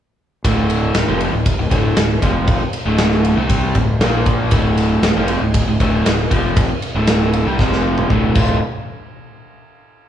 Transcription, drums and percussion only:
0.45 kick loud
0.45 ride medium
0.70 ride medium
0.95 snare loud
0.95 ride loud
1.21 ride medium
1.46 kick medium
1.46 ride loud
1.71 kick medium
1.71 ride medium
1.97 snare loud
1.97 ride loud
2.22 kick medium
2.22 ride medium
2.47 kick loud
2.47 ride loud
2.73 ride medium
2.98 snare loud
2.98 ride medium
3.12 snare soft
3.24 ride medium
3.49 kick medium
3.49 ride medium
3.75 kick medium
3.75 ride medium
4.01 snare loud
4.01 ride medium
4.26 kick medium
4.26 ride medium
4.51 kick loud
4.51 ride medium
4.77 snare soft
4.77 ride medium
5.03 snare loud
5.03 ride medium
5.28 ride medium
5.54 kick medium
5.54 ride loud
5.80 kick medium
5.80 ride medium
6.06 snare loud
6.06 ride loud
6.31 kick medium
6.31 ride medium
6.57 kick loud
6.57 ride loud
6.82 ride medium
7.07 snare loud
7.07 ride loud
7.33 ride medium
7.59 kick medium
7.59 snare medium
7.72 snare medium
7.98 mid tom medium
8.10 kick medium
8.35 kick loud
8.35 crash medium

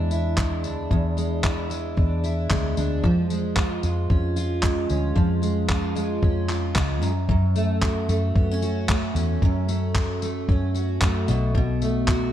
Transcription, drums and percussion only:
0.11 tambourine medium
0.38 kick loud
0.38 clap loud
0.38 clap medium
0.64 tambourine medium
0.91 kick loud
1.18 tambourine medium
1.44 kick loud
1.44 clap loud
1.44 clap medium
1.71 tambourine medium
1.97 kick loud
2.24 tambourine medium
2.50 kick loud
2.50 clap loud
2.50 clap medium
2.77 tambourine medium
3.04 kick loud
3.30 tambourine medium
3.56 kick loud
3.56 clap loud
3.56 clap medium
3.83 tambourine medium
4.10 kick loud
4.37 tambourine medium
4.63 kick loud
4.63 clap loud
4.63 clap medium
4.90 tambourine medium
5.16 kick loud
5.43 tambourine medium
5.69 kick loud
5.69 clap medium
5.69 clap loud
5.96 tambourine medium
6.23 kick loud
6.49 clap medium
6.49 tambourine medium
6.76 kick loud
6.76 clap loud
6.76 clap medium
7.03 tambourine medium
7.29 kick loud
7.56 tambourine medium
7.82 kick loud
7.82 clap loud
7.82 clap medium
8.09 tambourine medium
8.36 kick loud
8.62 tambourine medium
8.89 kick loud
8.89 clap medium
8.89 clap loud
9.16 tambourine medium
9.42 kick loud
9.69 tambourine medium
9.95 kick loud
9.95 clap loud
9.95 clap medium
10.22 tambourine medium
10.49 kick loud
10.75 tambourine medium
11.01 kick loud
11.01 clap loud
11.01 clap medium
11.28 tambourine medium
11.55 kick loud
11.82 tambourine medium
12.08 kick loud
12.08 clap loud
12.08 clap medium

